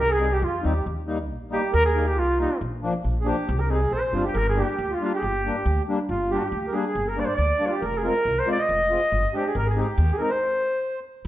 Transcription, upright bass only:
0.00 0.41 C2 loud
0.42 0.61 F2 medium
0.65 0.84 D#2 medium
0.86 1.31 D#2 loud
1.31 1.57 A#1 loud
1.74 2.18 D#2 loud
2.18 2.44 C2 loud
2.61 2.87 A#1 loud
3.04 3.31 A#1 medium
3.49 3.90 C2 loud
3.91 4.11 A#1 medium
4.13 4.33 G1 medium
4.35 4.61 G1 loud
4.79 4.92 D2 loud
5.22 5.49 G1 medium
5.66 5.79 D2 loud
6.09 6.35 G1 loud
6.52 6.65 D2 loud
6.95 7.22 G1 loud
7.38 7.51 D2 medium
7.82 8.08 F1 medium
8.25 8.38 C2 loud
8.69 8.95 F1 loud
9.12 9.25 G1 loud
9.55 9.80 G#1 loud
9.98 10.10 D#2 loud

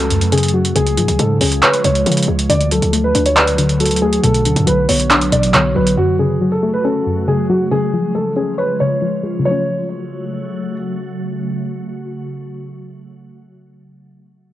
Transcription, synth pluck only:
0.00 0.31 C#3 medium
0.00 0.52 F#3 medium
0.00 0.76 A3 medium
0.00 0.76 C#4 loud
0.11 0.76 F#2 medium
0.33 0.74 C#3 medium
0.53 0.75 F#3 medium
0.75 1.83 C#3 medium
0.97 2.05 F3 medium
1.19 2.27 G#3 medium
1.41 2.50 C#4 medium
1.62 2.50 C#5 loud
1.84 2.50 C#3 medium
2.06 2.50 F3 medium
2.28 2.50 G#3 medium
2.49 3.57 D3 loud
2.71 3.79 F#3 medium
2.93 4.01 A3 loud
3.15 4.24 D4 medium
3.37 4.24 D5 loud
3.58 4.23 D3 medium
3.80 4.24 F#3 medium
4.02 4.24 A3 medium
4.24 5.31 B2 medium
4.46 5.53 D3 medium
4.66 5.74 F#3 medium
4.89 5.97 B3 medium
5.10 5.97 D4 loud
5.32 5.97 B2 medium
5.54 5.98 D3 medium
5.75 5.97 F#3 medium
5.97 7.05 F#2 medium
6.19 7.26 C#3 medium
6.41 7.48 F#3 medium
6.63 7.71 A3 medium
6.85 7.71 C#4 loud
7.06 7.71 F#2 medium
7.27 7.70 C#3 medium
7.50 7.71 F#3 medium
7.71 8.80 C#3 loud
7.93 9.00 F3 medium
8.15 9.22 G#3 medium
8.36 9.45 C#4 medium
8.58 9.45 C#5 loud
8.81 9.38 C#3 medium
9.02 9.45 F3 medium
9.23 9.45 G#3 medium
9.39 13.34 C#3 medium
9.43 13.38 F#3 medium
9.43 13.42 A3 medium
9.51 13.46 C#4 medium

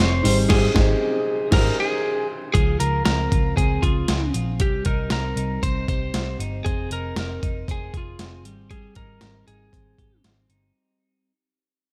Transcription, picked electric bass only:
0.00 0.20 F1 loud
0.25 0.46 G#1 loud
0.50 0.68 G#1 loud
0.75 0.93 G#1 loud
1.52 1.70 G#1 loud
2.55 2.76 C#2 medium
2.80 3.01 C#2 medium
3.06 3.27 C#2 loud
3.32 3.53 C#2 medium
3.57 3.78 C#2 loud
3.83 4.04 C#2 medium
4.09 4.30 C#2 medium
4.34 4.60 A#1 medium
4.60 4.81 C2 medium
4.86 5.07 C2 medium
5.11 5.32 C2 loud
5.36 5.58 C2 medium
5.62 5.83 C2 medium
5.88 6.09 C2 medium
6.14 6.35 C2 medium
6.39 6.60 G1 medium
6.66 6.86 F1 medium
6.90 7.12 F1 medium
7.16 7.37 F1 medium
7.43 7.63 F1 medium
7.68 7.89 F1 medium
7.94 8.15 F1 medium
8.19 8.45 F1 medium
8.45 8.87 G#1 medium
8.96 9.17 G#1 medium
9.21 9.42 G#1 medium
9.48 9.68 G#1 medium
9.73 9.94 G#1 medium
9.98 10.19 G#1 medium
10.25 10.45 G#1 medium
10.49 10.70 G1 medium

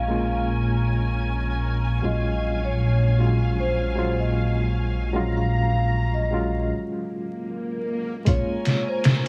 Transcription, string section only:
0.00 6.66 C#4 medium
0.00 1.98 A#4 medium
0.00 5.10 G#5 medium
2.03 6.67 F#3 medium
2.03 6.67 F5 medium
5.14 6.68 A#5 medium
8.27 9.28 C#4 medium
8.27 9.28 A#4 medium
8.27 9.28 G#5 medium

